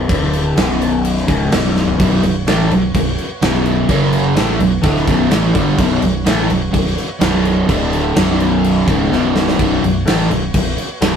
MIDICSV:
0, 0, Header, 1, 5, 480
1, 0, Start_track
1, 0, Key_signature, 2, "minor"
1, 0, Tempo, 474684
1, 99, Time_signature, 4, 2, 24, 8
1, 11289, End_track
2, 0, Start_track
2, 0, Title_t, "Tonewheel organ"
2, 0, Program_c, 0, 16
2, 118, Note_on_c, 0, 76, 79
2, 126, Note_on_c, 0, 69, 66
2, 134, Note_on_c, 0, 62, 68
2, 560, Note_on_c, 0, 66, 58
2, 563, Note_on_c, 0, 59, 63
2, 563, Note_on_c, 0, 73, 73
2, 584, Note_off_c, 0, 76, 0
2, 588, Note_off_c, 0, 69, 0
2, 592, Note_off_c, 0, 62, 0
2, 3898, Note_off_c, 0, 66, 0
2, 3899, Note_off_c, 0, 59, 0
2, 3899, Note_off_c, 0, 73, 0
2, 3928, Note_on_c, 0, 66, 81
2, 3943, Note_on_c, 0, 54, 68
2, 3943, Note_on_c, 0, 61, 64
2, 4404, Note_off_c, 0, 66, 0
2, 4417, Note_off_c, 0, 54, 0
2, 4417, Note_off_c, 0, 61, 0
2, 4417, Note_on_c, 0, 66, 60
2, 4421, Note_on_c, 0, 59, 66
2, 4434, Note_on_c, 0, 73, 77
2, 7743, Note_off_c, 0, 66, 0
2, 7745, Note_off_c, 0, 59, 0
2, 7752, Note_off_c, 0, 73, 0
2, 7795, Note_on_c, 0, 69, 65
2, 7803, Note_on_c, 0, 62, 71
2, 7811, Note_on_c, 0, 76, 77
2, 8262, Note_off_c, 0, 69, 0
2, 8262, Note_on_c, 0, 59, 67
2, 8264, Note_on_c, 0, 73, 76
2, 8266, Note_off_c, 0, 62, 0
2, 8270, Note_off_c, 0, 76, 0
2, 8273, Note_on_c, 0, 66, 61
2, 11289, Note_off_c, 0, 59, 0
2, 11289, Note_off_c, 0, 66, 0
2, 11289, Note_off_c, 0, 73, 0
2, 11289, End_track
3, 0, Start_track
3, 0, Title_t, "Overdriven electric guitar"
3, 0, Program_c, 1, 29
3, 84, Note_on_c, 1, 38, 89
3, 90, Note_on_c, 1, 45, 103
3, 92, Note_on_c, 1, 50, 106
3, 565, Note_off_c, 1, 38, 0
3, 568, Note_off_c, 1, 45, 0
3, 569, Note_off_c, 1, 50, 0
3, 571, Note_on_c, 1, 35, 82
3, 578, Note_on_c, 1, 42, 106
3, 579, Note_on_c, 1, 47, 98
3, 1285, Note_off_c, 1, 35, 0
3, 1289, Note_on_c, 1, 37, 94
3, 1290, Note_off_c, 1, 42, 0
3, 1292, Note_off_c, 1, 47, 0
3, 1294, Note_on_c, 1, 44, 91
3, 1296, Note_on_c, 1, 49, 109
3, 1528, Note_off_c, 1, 37, 0
3, 1530, Note_off_c, 1, 44, 0
3, 1531, Note_off_c, 1, 49, 0
3, 1534, Note_on_c, 1, 35, 83
3, 1540, Note_on_c, 1, 47, 91
3, 1544, Note_on_c, 1, 42, 87
3, 2008, Note_off_c, 1, 35, 0
3, 2013, Note_off_c, 1, 42, 0
3, 2013, Note_off_c, 1, 47, 0
3, 2020, Note_on_c, 1, 35, 83
3, 2025, Note_on_c, 1, 42, 93
3, 2025, Note_on_c, 1, 47, 92
3, 2248, Note_off_c, 1, 35, 0
3, 2251, Note_off_c, 1, 42, 0
3, 2255, Note_off_c, 1, 47, 0
3, 2260, Note_on_c, 1, 35, 62
3, 2263, Note_on_c, 1, 42, 72
3, 2453, Note_off_c, 1, 35, 0
3, 2454, Note_off_c, 1, 42, 0
3, 2497, Note_on_c, 1, 45, 88
3, 2504, Note_on_c, 1, 52, 101
3, 2512, Note_on_c, 1, 57, 101
3, 2732, Note_off_c, 1, 45, 0
3, 2735, Note_off_c, 1, 52, 0
3, 2739, Note_off_c, 1, 57, 0
3, 2748, Note_on_c, 1, 42, 69
3, 2750, Note_on_c, 1, 35, 62
3, 2936, Note_off_c, 1, 42, 0
3, 2938, Note_off_c, 1, 35, 0
3, 2989, Note_on_c, 1, 35, 62
3, 2999, Note_on_c, 1, 42, 75
3, 3177, Note_off_c, 1, 35, 0
3, 3182, Note_off_c, 1, 42, 0
3, 3466, Note_on_c, 1, 35, 91
3, 3471, Note_on_c, 1, 42, 89
3, 3473, Note_on_c, 1, 47, 95
3, 3915, Note_off_c, 1, 42, 0
3, 3923, Note_off_c, 1, 35, 0
3, 3927, Note_on_c, 1, 42, 100
3, 3936, Note_off_c, 1, 47, 0
3, 3936, Note_on_c, 1, 49, 105
3, 3940, Note_on_c, 1, 54, 98
3, 4407, Note_off_c, 1, 42, 0
3, 4407, Note_off_c, 1, 49, 0
3, 4411, Note_on_c, 1, 52, 98
3, 4413, Note_off_c, 1, 54, 0
3, 4413, Note_on_c, 1, 45, 100
3, 4423, Note_on_c, 1, 57, 113
3, 4648, Note_off_c, 1, 45, 0
3, 4649, Note_off_c, 1, 52, 0
3, 4652, Note_on_c, 1, 35, 60
3, 4655, Note_off_c, 1, 57, 0
3, 4659, Note_on_c, 1, 42, 63
3, 4848, Note_off_c, 1, 35, 0
3, 4852, Note_off_c, 1, 42, 0
3, 4872, Note_on_c, 1, 38, 97
3, 4884, Note_on_c, 1, 50, 109
3, 4886, Note_on_c, 1, 45, 105
3, 5119, Note_off_c, 1, 38, 0
3, 5125, Note_off_c, 1, 50, 0
3, 5126, Note_off_c, 1, 45, 0
3, 5128, Note_on_c, 1, 35, 97
3, 5132, Note_on_c, 1, 47, 100
3, 5134, Note_on_c, 1, 42, 99
3, 5367, Note_off_c, 1, 35, 0
3, 5369, Note_off_c, 1, 47, 0
3, 5370, Note_off_c, 1, 42, 0
3, 5374, Note_on_c, 1, 45, 91
3, 5377, Note_on_c, 1, 52, 95
3, 5383, Note_on_c, 1, 57, 101
3, 5606, Note_off_c, 1, 45, 0
3, 5610, Note_off_c, 1, 52, 0
3, 5610, Note_on_c, 1, 43, 84
3, 5614, Note_on_c, 1, 50, 91
3, 5615, Note_off_c, 1, 57, 0
3, 5622, Note_on_c, 1, 55, 101
3, 5848, Note_off_c, 1, 43, 0
3, 5850, Note_off_c, 1, 50, 0
3, 5854, Note_off_c, 1, 55, 0
3, 5860, Note_on_c, 1, 35, 95
3, 5862, Note_on_c, 1, 42, 104
3, 5867, Note_on_c, 1, 47, 102
3, 6093, Note_off_c, 1, 35, 0
3, 6094, Note_off_c, 1, 42, 0
3, 6096, Note_off_c, 1, 47, 0
3, 6105, Note_on_c, 1, 35, 72
3, 6110, Note_on_c, 1, 42, 76
3, 6295, Note_off_c, 1, 35, 0
3, 6297, Note_off_c, 1, 42, 0
3, 6332, Note_on_c, 1, 45, 101
3, 6338, Note_on_c, 1, 52, 106
3, 6342, Note_on_c, 1, 57, 106
3, 6562, Note_off_c, 1, 45, 0
3, 6566, Note_on_c, 1, 35, 65
3, 6572, Note_off_c, 1, 52, 0
3, 6574, Note_off_c, 1, 57, 0
3, 6577, Note_on_c, 1, 42, 70
3, 6765, Note_off_c, 1, 35, 0
3, 6770, Note_off_c, 1, 42, 0
3, 6803, Note_on_c, 1, 35, 65
3, 6807, Note_on_c, 1, 42, 73
3, 7003, Note_off_c, 1, 35, 0
3, 7005, Note_off_c, 1, 42, 0
3, 7287, Note_on_c, 1, 35, 93
3, 7292, Note_on_c, 1, 42, 99
3, 7298, Note_on_c, 1, 47, 88
3, 7758, Note_off_c, 1, 35, 0
3, 7762, Note_on_c, 1, 38, 88
3, 7768, Note_off_c, 1, 42, 0
3, 7771, Note_off_c, 1, 47, 0
3, 7776, Note_on_c, 1, 45, 94
3, 7780, Note_on_c, 1, 50, 103
3, 8237, Note_off_c, 1, 38, 0
3, 8241, Note_on_c, 1, 35, 103
3, 8242, Note_off_c, 1, 45, 0
3, 8246, Note_on_c, 1, 42, 97
3, 8248, Note_off_c, 1, 50, 0
3, 8252, Note_on_c, 1, 47, 110
3, 8962, Note_off_c, 1, 35, 0
3, 8964, Note_off_c, 1, 42, 0
3, 8967, Note_off_c, 1, 47, 0
3, 8974, Note_on_c, 1, 37, 94
3, 8987, Note_on_c, 1, 49, 92
3, 8988, Note_on_c, 1, 44, 101
3, 9205, Note_off_c, 1, 37, 0
3, 9208, Note_off_c, 1, 44, 0
3, 9209, Note_on_c, 1, 35, 88
3, 9212, Note_on_c, 1, 42, 95
3, 9215, Note_off_c, 1, 49, 0
3, 9220, Note_on_c, 1, 47, 90
3, 9676, Note_off_c, 1, 35, 0
3, 9681, Note_off_c, 1, 42, 0
3, 9683, Note_off_c, 1, 47, 0
3, 9688, Note_on_c, 1, 35, 83
3, 9693, Note_on_c, 1, 42, 95
3, 9696, Note_on_c, 1, 47, 106
3, 9925, Note_off_c, 1, 35, 0
3, 9928, Note_off_c, 1, 42, 0
3, 9929, Note_off_c, 1, 47, 0
3, 9940, Note_on_c, 1, 35, 65
3, 9947, Note_on_c, 1, 42, 67
3, 10131, Note_off_c, 1, 35, 0
3, 10134, Note_off_c, 1, 42, 0
3, 10169, Note_on_c, 1, 45, 89
3, 10178, Note_on_c, 1, 57, 109
3, 10180, Note_on_c, 1, 52, 100
3, 10405, Note_off_c, 1, 45, 0
3, 10410, Note_off_c, 1, 57, 0
3, 10411, Note_off_c, 1, 52, 0
3, 10426, Note_on_c, 1, 35, 58
3, 10430, Note_on_c, 1, 42, 68
3, 10614, Note_off_c, 1, 35, 0
3, 10615, Note_off_c, 1, 42, 0
3, 10660, Note_on_c, 1, 35, 66
3, 10663, Note_on_c, 1, 42, 75
3, 10850, Note_off_c, 1, 35, 0
3, 10852, Note_off_c, 1, 42, 0
3, 11134, Note_on_c, 1, 35, 93
3, 11136, Note_on_c, 1, 42, 92
3, 11137, Note_on_c, 1, 47, 102
3, 11289, Note_off_c, 1, 35, 0
3, 11289, Note_off_c, 1, 42, 0
3, 11289, Note_off_c, 1, 47, 0
3, 11289, End_track
4, 0, Start_track
4, 0, Title_t, "Fingered electric bass"
4, 0, Program_c, 2, 33
4, 98, Note_on_c, 2, 26, 94
4, 545, Note_off_c, 2, 26, 0
4, 577, Note_on_c, 2, 23, 86
4, 1258, Note_off_c, 2, 23, 0
4, 1299, Note_on_c, 2, 25, 89
4, 1523, Note_off_c, 2, 25, 0
4, 1540, Note_on_c, 2, 23, 98
4, 1987, Note_off_c, 2, 23, 0
4, 2020, Note_on_c, 2, 23, 97
4, 2241, Note_off_c, 2, 23, 0
4, 2247, Note_on_c, 2, 23, 86
4, 2477, Note_off_c, 2, 23, 0
4, 2493, Note_on_c, 2, 33, 86
4, 2720, Note_off_c, 2, 33, 0
4, 2725, Note_on_c, 2, 23, 82
4, 2955, Note_off_c, 2, 23, 0
4, 2972, Note_on_c, 2, 23, 78
4, 3199, Note_off_c, 2, 23, 0
4, 3452, Note_on_c, 2, 23, 90
4, 3902, Note_off_c, 2, 23, 0
4, 3928, Note_on_c, 2, 30, 89
4, 4381, Note_off_c, 2, 30, 0
4, 4406, Note_on_c, 2, 33, 82
4, 4636, Note_off_c, 2, 33, 0
4, 4642, Note_on_c, 2, 23, 86
4, 4874, Note_off_c, 2, 23, 0
4, 4886, Note_on_c, 2, 26, 93
4, 5116, Note_off_c, 2, 26, 0
4, 5128, Note_on_c, 2, 23, 93
4, 5357, Note_off_c, 2, 23, 0
4, 5363, Note_on_c, 2, 33, 101
4, 5594, Note_off_c, 2, 33, 0
4, 5617, Note_on_c, 2, 31, 89
4, 5842, Note_off_c, 2, 31, 0
4, 5847, Note_on_c, 2, 23, 100
4, 6076, Note_off_c, 2, 23, 0
4, 6082, Note_on_c, 2, 23, 79
4, 6313, Note_off_c, 2, 23, 0
4, 6324, Note_on_c, 2, 33, 92
4, 6554, Note_off_c, 2, 33, 0
4, 6566, Note_on_c, 2, 23, 82
4, 6795, Note_off_c, 2, 23, 0
4, 6814, Note_on_c, 2, 23, 82
4, 7040, Note_off_c, 2, 23, 0
4, 7290, Note_on_c, 2, 23, 91
4, 7740, Note_off_c, 2, 23, 0
4, 7772, Note_on_c, 2, 26, 89
4, 8221, Note_off_c, 2, 26, 0
4, 8252, Note_on_c, 2, 23, 89
4, 8934, Note_off_c, 2, 23, 0
4, 8969, Note_on_c, 2, 25, 94
4, 9196, Note_off_c, 2, 25, 0
4, 9222, Note_on_c, 2, 23, 90
4, 9666, Note_off_c, 2, 23, 0
4, 9700, Note_on_c, 2, 23, 97
4, 9922, Note_off_c, 2, 23, 0
4, 9938, Note_on_c, 2, 23, 86
4, 10161, Note_off_c, 2, 23, 0
4, 10172, Note_on_c, 2, 33, 85
4, 10397, Note_off_c, 2, 33, 0
4, 10417, Note_on_c, 2, 23, 85
4, 10640, Note_off_c, 2, 23, 0
4, 10657, Note_on_c, 2, 23, 79
4, 10880, Note_off_c, 2, 23, 0
4, 11137, Note_on_c, 2, 23, 96
4, 11289, Note_off_c, 2, 23, 0
4, 11289, End_track
5, 0, Start_track
5, 0, Title_t, "Drums"
5, 95, Note_on_c, 9, 36, 102
5, 95, Note_on_c, 9, 49, 80
5, 196, Note_off_c, 9, 36, 0
5, 196, Note_off_c, 9, 49, 0
5, 337, Note_on_c, 9, 49, 63
5, 438, Note_off_c, 9, 49, 0
5, 578, Note_on_c, 9, 49, 77
5, 584, Note_on_c, 9, 38, 114
5, 679, Note_off_c, 9, 49, 0
5, 685, Note_off_c, 9, 38, 0
5, 825, Note_on_c, 9, 49, 60
5, 926, Note_off_c, 9, 49, 0
5, 1058, Note_on_c, 9, 49, 83
5, 1159, Note_off_c, 9, 49, 0
5, 1186, Note_on_c, 9, 38, 33
5, 1287, Note_off_c, 9, 38, 0
5, 1298, Note_on_c, 9, 36, 102
5, 1298, Note_on_c, 9, 49, 60
5, 1305, Note_on_c, 9, 38, 31
5, 1399, Note_off_c, 9, 36, 0
5, 1400, Note_off_c, 9, 49, 0
5, 1406, Note_off_c, 9, 38, 0
5, 1537, Note_on_c, 9, 49, 88
5, 1543, Note_on_c, 9, 38, 114
5, 1638, Note_off_c, 9, 49, 0
5, 1644, Note_off_c, 9, 38, 0
5, 1783, Note_on_c, 9, 38, 66
5, 1884, Note_off_c, 9, 38, 0
5, 1899, Note_on_c, 9, 43, 78
5, 2000, Note_off_c, 9, 43, 0
5, 2019, Note_on_c, 9, 49, 91
5, 2020, Note_on_c, 9, 36, 102
5, 2121, Note_off_c, 9, 49, 0
5, 2122, Note_off_c, 9, 36, 0
5, 2258, Note_on_c, 9, 49, 67
5, 2359, Note_off_c, 9, 49, 0
5, 2501, Note_on_c, 9, 49, 79
5, 2507, Note_on_c, 9, 38, 107
5, 2602, Note_off_c, 9, 49, 0
5, 2608, Note_off_c, 9, 38, 0
5, 2743, Note_on_c, 9, 49, 59
5, 2844, Note_off_c, 9, 49, 0
5, 2979, Note_on_c, 9, 36, 94
5, 2981, Note_on_c, 9, 49, 76
5, 3080, Note_off_c, 9, 36, 0
5, 3082, Note_off_c, 9, 49, 0
5, 3220, Note_on_c, 9, 49, 55
5, 3322, Note_off_c, 9, 49, 0
5, 3459, Note_on_c, 9, 49, 72
5, 3465, Note_on_c, 9, 38, 119
5, 3561, Note_off_c, 9, 49, 0
5, 3567, Note_off_c, 9, 38, 0
5, 3697, Note_on_c, 9, 49, 58
5, 3798, Note_off_c, 9, 49, 0
5, 3934, Note_on_c, 9, 36, 107
5, 3936, Note_on_c, 9, 49, 74
5, 4035, Note_off_c, 9, 36, 0
5, 4037, Note_off_c, 9, 49, 0
5, 4172, Note_on_c, 9, 49, 60
5, 4273, Note_off_c, 9, 49, 0
5, 4413, Note_on_c, 9, 49, 78
5, 4419, Note_on_c, 9, 38, 113
5, 4514, Note_off_c, 9, 49, 0
5, 4520, Note_off_c, 9, 38, 0
5, 4654, Note_on_c, 9, 49, 64
5, 4755, Note_off_c, 9, 49, 0
5, 4886, Note_on_c, 9, 49, 81
5, 4892, Note_on_c, 9, 36, 114
5, 4987, Note_off_c, 9, 49, 0
5, 4993, Note_off_c, 9, 36, 0
5, 5022, Note_on_c, 9, 38, 33
5, 5123, Note_off_c, 9, 38, 0
5, 5132, Note_on_c, 9, 36, 103
5, 5137, Note_on_c, 9, 49, 61
5, 5143, Note_on_c, 9, 38, 33
5, 5233, Note_off_c, 9, 36, 0
5, 5238, Note_off_c, 9, 49, 0
5, 5244, Note_off_c, 9, 38, 0
5, 5370, Note_on_c, 9, 49, 83
5, 5377, Note_on_c, 9, 38, 113
5, 5472, Note_off_c, 9, 49, 0
5, 5478, Note_off_c, 9, 38, 0
5, 5611, Note_on_c, 9, 49, 65
5, 5612, Note_on_c, 9, 36, 110
5, 5712, Note_off_c, 9, 49, 0
5, 5713, Note_off_c, 9, 36, 0
5, 5847, Note_on_c, 9, 49, 86
5, 5851, Note_on_c, 9, 36, 103
5, 5948, Note_off_c, 9, 49, 0
5, 5952, Note_off_c, 9, 36, 0
5, 6088, Note_on_c, 9, 49, 66
5, 6189, Note_off_c, 9, 49, 0
5, 6332, Note_on_c, 9, 49, 82
5, 6338, Note_on_c, 9, 38, 117
5, 6434, Note_off_c, 9, 49, 0
5, 6440, Note_off_c, 9, 38, 0
5, 6573, Note_on_c, 9, 49, 60
5, 6674, Note_off_c, 9, 49, 0
5, 6813, Note_on_c, 9, 49, 81
5, 6814, Note_on_c, 9, 36, 89
5, 6914, Note_off_c, 9, 49, 0
5, 6915, Note_off_c, 9, 36, 0
5, 6944, Note_on_c, 9, 38, 34
5, 7046, Note_off_c, 9, 38, 0
5, 7059, Note_on_c, 9, 49, 54
5, 7065, Note_on_c, 9, 38, 33
5, 7160, Note_off_c, 9, 49, 0
5, 7166, Note_off_c, 9, 38, 0
5, 7291, Note_on_c, 9, 49, 80
5, 7297, Note_on_c, 9, 38, 115
5, 7392, Note_off_c, 9, 49, 0
5, 7398, Note_off_c, 9, 38, 0
5, 7535, Note_on_c, 9, 49, 60
5, 7636, Note_off_c, 9, 49, 0
5, 7775, Note_on_c, 9, 49, 71
5, 7776, Note_on_c, 9, 36, 106
5, 7876, Note_off_c, 9, 49, 0
5, 7877, Note_off_c, 9, 36, 0
5, 8018, Note_on_c, 9, 49, 60
5, 8119, Note_off_c, 9, 49, 0
5, 8253, Note_on_c, 9, 49, 80
5, 8259, Note_on_c, 9, 38, 119
5, 8354, Note_off_c, 9, 49, 0
5, 8360, Note_off_c, 9, 38, 0
5, 8496, Note_on_c, 9, 49, 58
5, 8597, Note_off_c, 9, 49, 0
5, 8740, Note_on_c, 9, 49, 80
5, 8841, Note_off_c, 9, 49, 0
5, 8976, Note_on_c, 9, 36, 105
5, 8980, Note_on_c, 9, 49, 60
5, 8986, Note_on_c, 9, 38, 32
5, 9077, Note_off_c, 9, 36, 0
5, 9081, Note_off_c, 9, 49, 0
5, 9087, Note_off_c, 9, 38, 0
5, 9226, Note_on_c, 9, 38, 65
5, 9327, Note_off_c, 9, 38, 0
5, 9462, Note_on_c, 9, 38, 99
5, 9563, Note_off_c, 9, 38, 0
5, 9590, Note_on_c, 9, 38, 81
5, 9691, Note_off_c, 9, 38, 0
5, 9700, Note_on_c, 9, 49, 84
5, 9701, Note_on_c, 9, 36, 100
5, 9801, Note_off_c, 9, 49, 0
5, 9802, Note_off_c, 9, 36, 0
5, 9950, Note_on_c, 9, 49, 67
5, 10051, Note_off_c, 9, 49, 0
5, 10186, Note_on_c, 9, 49, 91
5, 10192, Note_on_c, 9, 38, 106
5, 10287, Note_off_c, 9, 49, 0
5, 10293, Note_off_c, 9, 38, 0
5, 10425, Note_on_c, 9, 49, 64
5, 10526, Note_off_c, 9, 49, 0
5, 10657, Note_on_c, 9, 49, 84
5, 10660, Note_on_c, 9, 36, 92
5, 10758, Note_off_c, 9, 49, 0
5, 10761, Note_off_c, 9, 36, 0
5, 10902, Note_on_c, 9, 49, 59
5, 11003, Note_off_c, 9, 49, 0
5, 11140, Note_on_c, 9, 49, 80
5, 11146, Note_on_c, 9, 38, 117
5, 11241, Note_off_c, 9, 49, 0
5, 11247, Note_off_c, 9, 38, 0
5, 11289, End_track
0, 0, End_of_file